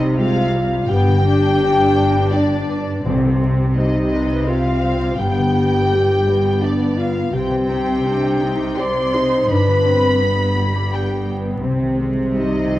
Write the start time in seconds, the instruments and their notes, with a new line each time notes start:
Already playing: double bass section C2, cello section C3, harp C3 G3 C4 G4 C5 G5 D6, viola section G3, french horn D#4, violin section D#5
0.00 harp C6
0.17 viola section G#3, french horn F4, violin section F5, harp G5
0.53 viola section G3, harp C5
0.71 harp G4
0.89 double bass section G1, harp G2, cello section G2, viola section B3, french horn G4, violin section G5
1.07 harp D3
1.25 viola section D4
1.43 harp G4
1.61 harp B4
1.97 harp G5
2.15 harp B5
2.33 french horn D4, violin section D5, harp G5
2.69 harp B4
2.88 harp G4
3.05 double bass section C2, harp C3, timpani C3, cello section C3, viola section C4
3.23 harp G3
3.59 harp G4
3.76 viola section G3, french horn D#4, harp C5, violin section D#5
4.13 viola section B4, harp G5
4.31 harp C6
4.48 viola section C4, french horn F4, violin section F5, harp G5
4.67 harp D5
4.84 harp C5
5.03 harp G4
5.20 double bass section G1, harp G2, cello section G2, viola section B3, french horn G4, violin section G5
5.38 harp D3
5.74 harp G4
5.92 viola section G3, harp B4
6.27 viola section B3, harp G5
6.45 harp B5
6.62 french horn D4, violin section D5, harp G5
6.97 french horn F4, harp B4, violin section F5
7.15 harp G4
7.33 double bass section C2, harp C3, cello section C3, viola section C4, french horn G4, violin section G5
7.50 harp G3
7.67 harp D#4
7.86 harp G4
8.05 viola section D4
8.22 harp D#5
8.41 viola section D#4, harp G5
8.59 harp D6
8.77 french horn C5, viola section D5, harp G5, violin section C6
8.96 harp D#5
9.14 viola section D#4
9.31 harp G4
9.49 double bass section G1, harp G2, cello section G2, viola section D4, french horn B4, violin section B5
9.68 harp D3
9.85 viola section C4
10.03 harp G4
10.21 viola section B3
10.39 harp G4
10.57 viola section G3, harp G5
10.75 harp D6
10.91 viola section B3, french horn G4, violin section G5, harp G5
11.27 viola section B3, harp G4
11.46 harp C4
11.62 double bass section C2, harp C3, cello section C3, viola section C4
11.82 harp D#3
11.97 viola section G#3
12.17 harp G4
12.34 viola section G3, french horn D#4, harp C5, violin section D#5
12.70 viola section F3, harp G5